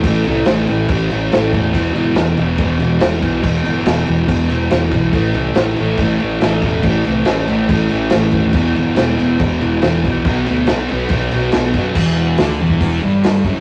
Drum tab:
CC |x-x-x-x-x-x-x-x-|x-x-x-x-x-x-x-x-|x-x-x-x-x-x-x-x-|x-x-x-x-x-x-x-x-|
HH |----------------|----------------|----------------|----------------|
SD |----o-------o---|----o-------o---|----o-------o---|----o-------o---|
BD |o-------o-----o-|o-------o-----o-|o-------o-----o-|o-------o-----o-|

CC |x-x-x-x-x-x-x-x-|x-x-x-x-x-x-x-x-|x-x-x-x-x-x-x-x-|x---------------|
HH |----------------|----------------|----------------|----o---o---o---|
SD |----o-------o---|----o-------o---|----o-------o---|----o-------o---|
BD |o-------o-----o-|o-------o-----o-|o-------o-----o-|o------oo-----o-|